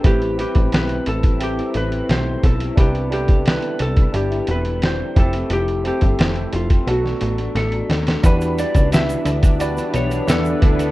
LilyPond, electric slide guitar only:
\new Staff \with { instrumentName = "Electric slide guitar" } { \time 4/4 \key a \dorian \tempo 4 = 88 g'8 g'8 b'8 a'8 g'8 b'8 c''8 a'8 | g'8 g'8 b'8 a'8 g'8 b'8 c''8 a'8 | g'8 g'4 f'8 fis'4 a'4 | \key e \dorian b'8 d''8 e''4 d''8 cis''8 a'4 | }